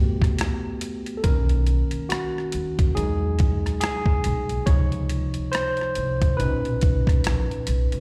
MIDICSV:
0, 0, Header, 1, 5, 480
1, 0, Start_track
1, 0, Key_signature, 5, "major"
1, 0, Tempo, 857143
1, 693, Time_signature, 4, 2, 24, 8
1, 4481, End_track
2, 0, Start_track
2, 0, Title_t, "Tine electric piano"
2, 0, Program_c, 0, 4
2, 0, Control_c, 0, 64, 127
2, 0, Note_on_c, 0, 57, 46
2, 0, Note_on_c, 0, 59, 52
2, 0, Note_on_c, 0, 66, 47
2, 0, Note_on_c, 0, 67, 80
2, 190, Note_off_c, 0, 67, 0
2, 431, Note_off_c, 0, 66, 0
2, 433, Note_off_c, 0, 57, 0
2, 435, Note_off_c, 0, 59, 0
2, 657, Note_on_c, 0, 69, 53
2, 691, Note_off_c, 0, 69, 0
2, 692, Note_on_c, 0, 51, 51
2, 692, Note_on_c, 0, 70, 72
2, 696, Note_on_c, 0, 58, 38
2, 699, Note_on_c, 0, 61, 49
2, 701, Control_c, 0, 64, 0
2, 811, Control_c, 0, 64, 127
2, 1030, Note_off_c, 0, 51, 0
2, 1032, Note_off_c, 0, 58, 0
2, 1034, Note_off_c, 0, 61, 0
2, 1171, Note_on_c, 0, 66, 77
2, 1187, Note_off_c, 0, 70, 0
2, 1652, Note_on_c, 0, 68, 86
2, 1653, Note_on_c, 0, 54, 47
2, 1658, Note_on_c, 0, 56, 46
2, 1660, Control_c, 0, 64, 0
2, 1660, Note_on_c, 0, 63, 59
2, 1667, Note_off_c, 0, 66, 0
2, 1769, Control_c, 0, 64, 127
2, 1991, Note_off_c, 0, 54, 0
2, 1994, Note_off_c, 0, 56, 0
2, 1995, Note_off_c, 0, 63, 0
2, 2124, Note_off_c, 0, 68, 0
2, 2131, Note_on_c, 0, 68, 93
2, 2610, Note_on_c, 0, 73, 84
2, 2614, Note_on_c, 0, 53, 45
2, 2618, Note_on_c, 0, 48, 42
2, 2621, Control_c, 0, 64, 0
2, 2622, Note_on_c, 0, 63, 46
2, 2626, Note_off_c, 0, 68, 0
2, 2719, Control_c, 0, 64, 127
2, 3069, Note_off_c, 0, 73, 0
2, 3089, Note_on_c, 0, 72, 101
2, 3311, Note_off_c, 0, 53, 0
2, 3313, Note_off_c, 0, 48, 0
2, 3315, Note_off_c, 0, 63, 0
2, 3549, Note_off_c, 0, 72, 0
2, 3567, Note_on_c, 0, 71, 80
2, 3573, Note_on_c, 0, 46, 47
2, 3575, Note_on_c, 0, 61, 46
2, 3579, Note_on_c, 0, 63, 51
2, 3582, Control_c, 0, 64, 0
2, 3664, Control_c, 0, 64, 127
2, 3911, Note_off_c, 0, 46, 0
2, 3912, Note_off_c, 0, 61, 0
2, 3914, Note_off_c, 0, 63, 0
2, 4268, Note_off_c, 0, 71, 0
2, 4481, End_track
3, 0, Start_track
3, 0, Title_t, "Upright bass"
3, 0, Program_c, 1, 32
3, 0, Note_on_c, 1, 31, 86
3, 130, Note_off_c, 1, 31, 0
3, 699, Note_on_c, 1, 35, 96
3, 1009, Note_off_c, 1, 35, 0
3, 1423, Note_on_c, 1, 39, 84
3, 1614, Note_off_c, 1, 39, 0
3, 1663, Note_on_c, 1, 40, 88
3, 2049, Note_off_c, 1, 40, 0
3, 2383, Note_on_c, 1, 35, 82
3, 2574, Note_off_c, 1, 35, 0
3, 2618, Note_on_c, 1, 37, 94
3, 2929, Note_off_c, 1, 37, 0
3, 3341, Note_on_c, 1, 36, 74
3, 3533, Note_off_c, 1, 36, 0
3, 3581, Note_on_c, 1, 35, 90
3, 4061, Note_off_c, 1, 35, 0
3, 4061, Note_on_c, 1, 34, 74
3, 4175, Note_off_c, 1, 34, 0
3, 4301, Note_on_c, 1, 35, 80
3, 4415, Note_off_c, 1, 35, 0
3, 4446, Note_on_c, 1, 37, 69
3, 4481, Note_off_c, 1, 37, 0
3, 4481, End_track
4, 0, Start_track
4, 0, Title_t, "Muted upright bass strokes"
4, 1089, Note_on_c, 9, 29, 41
4, 1145, Note_off_c, 9, 29, 0
4, 3005, Note_on_c, 9, 29, 40
4, 3061, Note_off_c, 9, 29, 0
4, 4481, End_track
5, 0, Start_track
5, 0, Title_t, "Drums"
5, 121, Note_on_c, 9, 36, 79
5, 132, Note_on_c, 9, 37, 34
5, 135, Note_on_c, 9, 42, 43
5, 177, Note_off_c, 9, 36, 0
5, 188, Note_off_c, 9, 37, 0
5, 191, Note_off_c, 9, 42, 0
5, 216, Note_on_c, 9, 42, 84
5, 230, Note_on_c, 9, 37, 95
5, 272, Note_off_c, 9, 42, 0
5, 286, Note_off_c, 9, 37, 0
5, 455, Note_on_c, 9, 42, 83
5, 511, Note_off_c, 9, 42, 0
5, 596, Note_on_c, 9, 42, 44
5, 652, Note_off_c, 9, 42, 0
5, 693, Note_on_c, 9, 42, 78
5, 694, Note_on_c, 9, 36, 89
5, 749, Note_off_c, 9, 42, 0
5, 750, Note_off_c, 9, 36, 0
5, 836, Note_on_c, 9, 42, 34
5, 892, Note_off_c, 9, 42, 0
5, 933, Note_on_c, 9, 42, 53
5, 989, Note_off_c, 9, 42, 0
5, 1070, Note_on_c, 9, 42, 49
5, 1126, Note_off_c, 9, 42, 0
5, 1176, Note_on_c, 9, 42, 68
5, 1187, Note_on_c, 9, 37, 96
5, 1232, Note_off_c, 9, 42, 0
5, 1243, Note_off_c, 9, 37, 0
5, 1334, Note_on_c, 9, 37, 32
5, 1390, Note_off_c, 9, 37, 0
5, 1413, Note_on_c, 9, 42, 70
5, 1469, Note_off_c, 9, 42, 0
5, 1561, Note_on_c, 9, 42, 54
5, 1562, Note_on_c, 9, 36, 73
5, 1617, Note_off_c, 9, 42, 0
5, 1618, Note_off_c, 9, 36, 0
5, 1663, Note_on_c, 9, 42, 71
5, 1719, Note_off_c, 9, 42, 0
5, 1896, Note_on_c, 9, 42, 54
5, 1903, Note_on_c, 9, 36, 78
5, 1952, Note_off_c, 9, 42, 0
5, 1959, Note_off_c, 9, 36, 0
5, 2050, Note_on_c, 9, 37, 34
5, 2053, Note_on_c, 9, 42, 44
5, 2106, Note_off_c, 9, 37, 0
5, 2109, Note_off_c, 9, 42, 0
5, 2134, Note_on_c, 9, 42, 89
5, 2148, Note_on_c, 9, 37, 91
5, 2190, Note_off_c, 9, 42, 0
5, 2204, Note_off_c, 9, 37, 0
5, 2272, Note_on_c, 9, 36, 86
5, 2328, Note_off_c, 9, 36, 0
5, 2374, Note_on_c, 9, 42, 77
5, 2430, Note_off_c, 9, 42, 0
5, 2517, Note_on_c, 9, 42, 46
5, 2573, Note_off_c, 9, 42, 0
5, 2614, Note_on_c, 9, 36, 89
5, 2614, Note_on_c, 9, 42, 66
5, 2670, Note_off_c, 9, 36, 0
5, 2670, Note_off_c, 9, 42, 0
5, 2756, Note_on_c, 9, 42, 37
5, 2812, Note_off_c, 9, 42, 0
5, 2853, Note_on_c, 9, 42, 66
5, 2909, Note_off_c, 9, 42, 0
5, 2990, Note_on_c, 9, 42, 47
5, 3046, Note_off_c, 9, 42, 0
5, 3096, Note_on_c, 9, 42, 70
5, 3107, Note_on_c, 9, 37, 89
5, 3152, Note_off_c, 9, 42, 0
5, 3163, Note_off_c, 9, 37, 0
5, 3231, Note_on_c, 9, 42, 30
5, 3256, Note_on_c, 9, 37, 28
5, 3287, Note_off_c, 9, 42, 0
5, 3312, Note_off_c, 9, 37, 0
5, 3334, Note_on_c, 9, 42, 65
5, 3390, Note_off_c, 9, 42, 0
5, 3481, Note_on_c, 9, 36, 77
5, 3481, Note_on_c, 9, 42, 53
5, 3537, Note_off_c, 9, 36, 0
5, 3537, Note_off_c, 9, 42, 0
5, 3583, Note_on_c, 9, 42, 62
5, 3639, Note_off_c, 9, 42, 0
5, 3725, Note_on_c, 9, 42, 27
5, 3781, Note_off_c, 9, 42, 0
5, 3816, Note_on_c, 9, 42, 60
5, 3823, Note_on_c, 9, 36, 83
5, 3872, Note_off_c, 9, 42, 0
5, 3879, Note_off_c, 9, 36, 0
5, 3960, Note_on_c, 9, 36, 89
5, 3969, Note_on_c, 9, 37, 35
5, 3972, Note_on_c, 9, 42, 45
5, 4016, Note_off_c, 9, 36, 0
5, 4025, Note_off_c, 9, 37, 0
5, 4028, Note_off_c, 9, 42, 0
5, 4056, Note_on_c, 9, 42, 90
5, 4070, Note_on_c, 9, 37, 92
5, 4112, Note_off_c, 9, 42, 0
5, 4126, Note_off_c, 9, 37, 0
5, 4208, Note_on_c, 9, 42, 35
5, 4264, Note_off_c, 9, 42, 0
5, 4294, Note_on_c, 9, 42, 85
5, 4350, Note_off_c, 9, 42, 0
5, 4437, Note_on_c, 9, 42, 41
5, 4481, Note_off_c, 9, 42, 0
5, 4481, End_track
0, 0, End_of_file